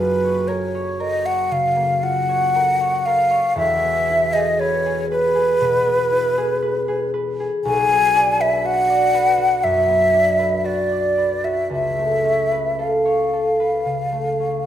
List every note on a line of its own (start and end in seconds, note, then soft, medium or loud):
0.00 3.35 F#1 medium
0.00 3.35 F#2 medium
0.00 1.75 A#3 medium
0.00 2.02 F4 medium
0.00 0.49 B4 medium
0.24 0.74 C#5 soft
0.48 0.99 A#4 medium
0.48 1.02 C#5 medium
0.75 1.24 C#5 soft
1.00 2.54 A#4 medium
1.00 1.27 D#5 medium
1.25 2.28 C#5 medium
1.25 1.54 F#5 medium
1.51 3.61 C#3 soft
1.51 2.05 F5 medium
1.76 3.61 A#3 soft
2.03 3.61 F4 soft
2.03 3.07 F#5 loud
2.29 2.79 C#5 medium
2.55 3.06 A#4 medium
2.80 3.29 C#5 medium
3.06 3.62 A#4 medium
3.06 3.57 F5 loud
3.31 3.61 C#5 medium
3.55 7.45 E1 medium
3.55 7.46 E2 medium
3.55 4.35 E5 loud
3.82 5.85 B3 medium
4.10 6.10 E4 medium
4.33 4.85 G#4 medium
4.33 4.61 D#5 loud
4.60 5.10 B4 medium
4.60 5.10 C#5 loud
4.86 5.34 G#4 medium
5.10 7.10 B4 loud
5.10 6.61 B4 medium
5.35 6.37 G#4 medium
5.61 7.68 B2 medium
5.86 7.89 B3 medium
6.11 7.68 E4 medium
6.38 6.87 G#4 medium
6.62 7.13 B4 medium
6.88 7.39 G#4 medium
7.14 8.38 B4 medium
7.40 11.30 G#4 medium
7.65 11.55 B1 medium
7.65 8.42 G#5 loud
7.90 9.87 B3 medium
8.15 10.12 D4 medium
8.39 9.13 B4 medium
8.39 8.67 E5 loud
8.65 9.37 F#4 medium
8.65 9.65 F#5 loud
8.89 10.90 D5 medium
9.14 10.37 B4 medium
9.38 10.63 F#4 medium
9.63 11.76 F#2 soft
9.63 10.67 E5 loud
9.88 13.78 B3 medium
10.13 11.76 D4 soft
10.39 11.17 B4 medium
10.64 11.43 F#4 medium
10.64 11.46 D5 medium
10.92 11.76 D5 soft
11.18 12.50 B4 soft
11.44 11.75 F#4 soft
11.44 11.71 E5 medium
11.70 14.66 C#2 soft
11.70 12.81 E5 medium
11.99 14.11 A3 soft
12.24 14.39 C#4 soft
12.51 13.59 B4 soft
12.79 13.32 A4 soft
12.79 14.66 F5 medium
13.05 14.66 C#5 soft
13.33 14.66 A4 soft
13.60 14.65 B4 soft
13.85 14.66 C#3 soft
14.12 14.66 A3 soft
14.40 14.66 C#4 soft